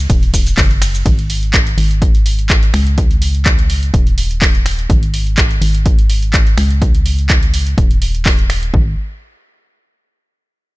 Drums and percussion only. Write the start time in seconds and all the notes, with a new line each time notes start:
0.10 kick, closed hi-hat, ride, shaker
0.23 closed hi-hat
0.34 kick, open hi-hat, ride, shaker
0.47 closed hi-hat, shaker
0.58 kick, clap, open hi-hat, ride, shaker
0.71 closed hi-hat
0.82 finger snap, open hi-hat, ride, shaker
0.95 closed hi-hat, shaker
1.06 kick, closed hi-hat
1.19 closed hi-hat
1.30 open hi-hat
1.43 closed hi-hat
1.54 finger snap, kick, clap, closed hi-hat
1.67 closed hi-hat
1.78 open hi-hat
1.91 closed hi-hat
2.02 kick, closed hi-hat
2.15 closed hi-hat
2.26 open hi-hat
2.39 closed hi-hat
2.50 kick, clap, closed hi-hat
2.63 closed hi-hat
2.74 finger snap, open hi-hat
2.87 closed hi-hat
2.98 kick, closed hi-hat
3.11 closed hi-hat
3.22 open hi-hat
3.35 closed hi-hat
3.46 finger snap, kick, clap, closed hi-hat
3.59 closed hi-hat
3.70 open hi-hat
3.83 closed hi-hat
3.94 kick, closed hi-hat
4.07 closed hi-hat
4.18 open hi-hat
4.31 closed hi-hat
4.42 kick, clap, open hi-hat
4.55 closed hi-hat
4.66 finger snap, open hi-hat
4.79 closed hi-hat
4.90 kick, closed hi-hat
5.03 closed hi-hat
5.14 open hi-hat
5.27 closed hi-hat
5.38 finger snap, kick, clap, closed hi-hat
5.51 closed hi-hat
5.62 open hi-hat
5.75 closed hi-hat
5.86 kick, closed hi-hat
5.99 closed hi-hat
6.10 open hi-hat
6.23 closed hi-hat
6.34 kick, clap, closed hi-hat
6.47 closed hi-hat
6.58 finger snap, open hi-hat
6.71 closed hi-hat
6.82 kick, closed hi-hat
6.95 closed hi-hat
7.06 open hi-hat
7.19 closed hi-hat
7.30 finger snap, kick, clap, closed hi-hat
7.43 closed hi-hat
7.54 open hi-hat
7.67 closed hi-hat
7.78 kick, closed hi-hat
7.91 closed hi-hat
8.02 open hi-hat
8.15 closed hi-hat
8.26 kick, clap, open hi-hat
8.39 closed hi-hat
8.50 finger snap, open hi-hat
8.63 closed hi-hat
8.74 kick